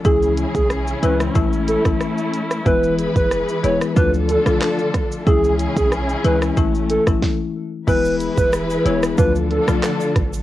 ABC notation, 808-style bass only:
X:1
M:4/4
L:1/16
Q:1/4=92
K:Emix
V:1 name="808-style bass" clef=bass
C,,3 B,,,3 C,,2 A,,,3 G,,, z4 | E,,,3 F,,,2 z E,,, z D,,3 B,,, z4 | C,,3 B,,,3 C,,2 A,,,3 G,,, z4 | E,,,3 E,,,3 E,,,2 D,,3 B,,, z2 G,,,2 |]